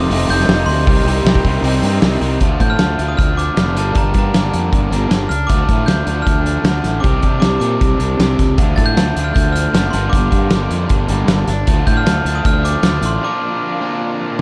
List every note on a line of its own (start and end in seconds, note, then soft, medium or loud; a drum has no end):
0.00 0.10 D#4 medium
0.00 2.39 D#4 medium
0.00 0.11 F4 loud
0.00 0.86 A4 medium
0.00 0.86 F5 medium
0.00 0.83 C6 medium
0.00 0.30 D#6 loud
0.09 0.25 F1 loud
0.09 0.29 F2 medium
0.09 0.29 C3 loud
0.09 0.30 D#3 loud
0.09 0.30 A3 loud
0.09 0.30 D#4 loud
0.09 0.30 F4 loud
0.09 open hi-hat medium
0.29 0.45 F1 loud
0.29 0.49 F2 medium
0.29 0.49 C3 medium
0.29 0.50 D#3 medium
0.29 0.50 A3 medium
0.29 0.51 D#4 medium
0.29 0.50 F4 loud
0.29 0.70 G6 loud
0.29 open hi-hat medium
0.40 snare soft
0.48 0.64 F1 medium
0.48 0.67 F2 medium
0.48 0.68 C3 medium
0.48 0.68 D#3 loud
0.48 0.69 A3 medium
0.48 0.68 D#4 loud
0.48 0.69 F4 loud
0.48 snare loud
0.48 open hi-hat medium
0.66 0.87 D2 medium
0.66 0.86 F2 medium
0.66 0.86 C3 medium
0.66 0.87 D#3 medium
0.66 0.87 A3 medium
0.66 0.87 D#4 medium
0.66 0.87 F4 loud
0.66 1.98 C6 loud
0.66 open hi-hat medium
0.86 1.03 C2 medium
0.86 1.06 C3 medium
0.86 1.05 D#3 loud
0.86 1.07 G3 loud
0.86 1.07 C4 loud
0.86 1.07 D#4 loud
0.86 1.07 G4 loud
0.86 2.39 A#4 medium
0.86 2.39 G5 medium
0.86 2.39 C6 medium
0.86 kick loud
0.86 open hi-hat medium
1.05 1.21 C2 medium
1.05 1.25 C3 medium
1.05 1.26 D#3 medium
1.05 1.26 G3 loud
1.05 1.26 C4 medium
1.05 1.27 D#4 medium
1.05 1.27 G4 medium
1.05 open hi-hat medium
1.25 1.41 C2 medium
1.25 1.44 C3 medium
1.25 1.44 D#3 medium
1.25 1.45 G3 medium
1.25 1.45 C4 medium
1.25 1.45 D#4 medium
1.25 1.45 G4 loud
1.25 snare loud
1.25 open hi-hat medium
1.35 kick medium
1.44 1.60 C2 loud
1.44 1.63 C3 medium
1.44 1.63 D#3 medium
1.44 1.64 G3 medium
1.44 1.64 C4 loud
1.44 1.65 D#4 medium
1.44 1.64 G4 medium
1.44 kick medium
1.44 open hi-hat medium
1.62 1.79 C2 medium
1.62 1.83 C3 medium
1.62 1.83 D#3 loud
1.62 1.83 G3 loud
1.62 1.84 C4 loud
1.62 1.84 D#4 loud
1.62 1.85 G4 loud
1.62 open hi-hat medium
1.82 1.98 G2 loud
1.82 2.02 C3 medium
1.82 2.01 D#3 medium
1.82 2.02 G3 medium
1.82 2.03 C4 medium
1.82 2.03 D#4 medium
1.82 2.03 G4 medium
1.82 open hi-hat medium
2.02 2.18 C2 medium
2.02 2.21 C3 medium
2.02 2.21 D#3 medium
2.02 2.21 G3 medium
2.02 2.21 C4 loud
2.02 2.21 D#4 medium
2.02 2.23 G4 loud
2.02 snare loud
2.02 open hi-hat medium
2.21 2.37 C2 medium
2.21 2.40 C3 medium
2.21 2.40 D#3 medium
2.21 2.40 G3 medium
2.21 2.40 C4 medium
2.21 2.40 D#4 medium
2.21 2.41 G4 medium
2.21 open hi-hat medium
2.41 2.56 D2 medium
2.41 2.98 D3 medium
2.41 2.98 F3 medium
2.41 2.99 A3 medium
2.41 2.99 D4 medium
2.41 3.77 F4 medium
2.41 kick loud
2.41 closed hi-hat medium
2.60 2.75 A2 medium
2.60 2.71 G6 medium
2.60 kick medium
2.60 closed hi-hat medium
2.70 3.10 F6 medium
2.79 2.94 D2 medium
2.79 snare loud
2.79 closed hi-hat medium
2.99 3.14 D2 medium
2.99 3.56 D3 medium
2.99 3.56 F3 medium
2.99 3.56 A3 medium
2.99 3.58 D4 medium
2.99 closed hi-hat medium
3.08 3.19 D#6 medium
3.17 3.48 D2 medium
3.17 3.38 F6 medium
3.17 kick loud
3.17 closed hi-hat medium
3.37 3.77 D6 medium
3.37 closed hi-hat medium
3.57 3.77 F1 medium
3.57 3.75 D3 medium
3.57 3.75 F3 medium
3.57 3.76 A3 medium
3.57 3.78 D4 medium
3.57 snare loud
3.57 closed hi-hat medium
3.76 3.92 G1 medium
3.76 4.33 G2 medium
3.76 4.33 D3 medium
3.76 4.34 G3 medium
3.76 4.34 A#3 medium
3.76 4.36 D4 loud
3.76 5.31 G4 medium
3.76 3.95 A5 medium
3.76 closed hi-hat medium
3.95 4.11 G1 medium
3.95 4.17 A#5 medium
3.95 kick loud
3.95 closed hi-hat medium
4.14 4.30 G2 medium
4.14 kick medium
4.14 closed hi-hat medium
4.18 4.71 A#5 medium
4.34 4.49 G1 medium
4.34 4.91 G2 medium
4.34 4.91 D3 medium
4.34 4.91 G3 medium
4.34 4.91 A#3 medium
4.34 4.90 D4 medium
4.34 snare loud
4.34 closed hi-hat medium
4.54 4.69 F2 medium
4.54 closed hi-hat medium
4.72 4.88 G1 medium
4.72 kick loud
4.72 closed hi-hat medium
4.91 5.07 G1 medium
4.91 5.30 G2 medium
4.91 5.30 D3 medium
4.91 5.30 G3 medium
4.91 5.29 A#3 medium
4.91 5.50 D4 medium
4.91 closed hi-hat medium
5.11 5.26 G1 medium
5.11 snare loud
5.11 closed hi-hat medium
5.29 5.45 C#2 medium
5.29 5.50 F6 medium
5.29 closed hi-hat medium
5.47 5.64 D2 medium
5.47 6.06 D3 medium
5.47 6.06 F3 loud
5.47 6.06 A3 loud
5.47 6.06 D4 medium
5.47 5.88 D6 loud
5.47 kick loud
5.47 closed hi-hat medium
5.52 7.04 F4 medium
5.69 5.84 A2 medium
5.69 kick medium
5.69 closed hi-hat medium
5.86 6.03 D2 medium
5.86 6.27 G6 medium
5.86 snare loud
5.86 closed hi-hat medium
6.07 6.22 D2 medium
6.07 6.64 D3 medium
6.07 6.65 F3 medium
6.07 6.64 A3 medium
6.07 6.67 D4 medium
6.07 closed hi-hat medium
6.22 6.98 F6 loud
6.26 6.57 D2 medium
6.26 kick loud
6.26 closed hi-hat medium
6.46 closed hi-hat medium
6.64 6.80 D2 medium
6.64 7.02 D3 medium
6.64 7.03 F3 medium
6.64 7.04 A3 medium
6.64 7.04 D4 medium
6.64 snare loud
6.64 closed hi-hat medium
6.84 6.99 A1 medium
6.84 snare soft
6.84 closed hi-hat medium
7.00 7.19 C2 medium
7.00 7.60 C3 medium
7.00 7.61 G3 medium
7.00 7.39 D6 medium
7.00 kick loud
7.00 closed hi-hat medium
7.05 7.61 C4 medium
7.05 7.62 D4 loud
7.05 8.58 G4 loud
7.22 7.38 C3 medium
7.22 kick medium
7.22 closed hi-hat medium
7.40 7.57 C2 medium
7.40 7.59 D6 medium
7.40 snare loud
7.40 closed hi-hat medium
7.60 7.76 A#2 medium
7.60 8.19 G3 medium
7.60 8.20 C4 medium
7.60 8.21 D4 medium
7.60 8.34 D6 medium
7.60 closed hi-hat medium
7.64 8.18 C3 medium
7.81 7.96 C2 medium
7.81 kick loud
7.81 closed hi-hat medium
7.99 8.15 C2 medium
7.99 closed hi-hat medium
8.19 8.35 C2 medium
8.19 8.57 C3 medium
8.19 8.58 G3 medium
8.19 8.58 C4 medium
8.19 8.60 D4 medium
8.19 snare loud
8.19 closed hi-hat medium
8.39 8.54 C#2 medium
8.39 kick medium
8.39 snare soft
8.39 closed hi-hat medium
8.58 8.73 D2 medium
8.58 9.15 D3 medium
8.58 9.16 F3 medium
8.58 9.16 A3 medium
8.58 9.16 D4 medium
8.58 9.94 F4 medium
8.58 kick loud
8.58 closed hi-hat medium
8.76 8.93 A2 medium
8.76 8.86 A6 medium
8.76 kick medium
8.76 closed hi-hat medium
8.86 9.23 G6 loud
8.97 9.12 D2 medium
8.97 snare loud
8.97 closed hi-hat medium
9.16 9.31 D2 medium
9.16 9.73 D3 medium
9.16 9.74 F3 medium
9.16 9.74 A3 medium
9.16 9.76 D4 medium
9.16 closed hi-hat medium
9.24 9.29 F6 medium
9.35 9.66 D2 medium
9.35 9.55 G6 medium
9.35 kick loud
9.35 closed hi-hat medium
9.52 9.94 F6 medium
9.52 closed hi-hat medium
9.73 9.89 F#1 medium
9.73 9.92 D3 medium
9.73 9.93 F3 medium
9.73 9.93 A3 medium
9.73 9.95 D4 medium
9.73 snare loud
9.73 closed hi-hat medium
9.90 10.09 G1 medium
9.90 10.50 G2 medium
9.90 10.51 D3 medium
9.90 10.51 G3 medium
9.90 10.51 A#3 medium
9.90 10.12 C6 medium
9.90 closed hi-hat medium
9.95 10.53 D4 medium
9.95 11.48 G4 loud
10.10 10.28 G1 medium
10.10 10.29 D6 medium
10.10 kick loud
10.10 closed hi-hat medium
10.31 10.47 G2 medium
10.31 10.86 D6 medium
10.31 kick medium
10.31 closed hi-hat medium
10.50 10.66 G1 medium
10.50 11.08 G2 medium
10.50 11.09 D3 medium
10.50 11.09 G3 medium
10.50 11.08 A#3 medium
10.50 11.09 D4 medium
10.50 snare loud
10.50 closed hi-hat medium
10.70 10.86 F2 medium
10.70 closed hi-hat medium
10.89 11.05 G1 medium
10.89 kick loud
10.89 closed hi-hat medium
11.08 11.24 G1 medium
11.08 11.48 G2 medium
11.08 11.48 D3 medium
11.08 11.48 G3 medium
11.08 11.47 A#3 medium
11.08 11.69 D4 medium
11.08 closed hi-hat medium
11.28 11.43 G1 medium
11.28 snare loud
11.28 closed hi-hat medium
11.47 11.63 G1 medium
11.47 snare soft
11.47 closed hi-hat medium
11.67 11.83 D2 medium
11.67 12.25 D3 medium
11.67 12.27 F3 medium
11.67 12.25 A3 loud
11.67 12.26 D4 loud
11.67 13.23 F4 loud
11.67 kick loud
11.67 closed hi-hat medium
11.87 12.02 A2 medium
11.87 11.97 G6 medium
11.87 kick medium
11.87 closed hi-hat medium
11.97 12.37 F6 loud
12.06 12.21 D2 medium
12.06 snare loud
12.06 closed hi-hat medium
12.25 12.40 D2 medium
12.25 12.83 D3 medium
12.25 12.84 F3 medium
12.25 12.84 A3 medium
12.25 12.83 D4 medium
12.25 closed hi-hat medium
12.35 12.45 D#6 medium
12.45 12.75 D2 loud
12.45 12.64 F6 loud
12.45 kick loud
12.45 closed hi-hat medium
12.65 13.05 D6 medium
12.65 closed hi-hat medium
12.83 12.98 D2 medium
12.83 13.22 D3 medium
12.83 13.22 F3 medium
12.83 13.22 A3 medium
12.83 13.23 D4 medium
12.83 snare loud
12.83 closed hi-hat medium
13.02 13.17 A1 medium
13.02 closed hi-hat medium
13.06 13.24 C6 medium
13.22 13.80 A#2 medium
13.22 14.41 D3 medium
13.22 13.80 F3 medium
13.22 13.81 A#3 medium
13.22 13.79 D4 loud
13.22 14.41 F4 loud
13.22 14.36 D6 medium
13.81 14.38 A#2 medium
13.81 14.38 F3 medium
13.81 14.38 A#3 medium
13.81 14.38 D4 medium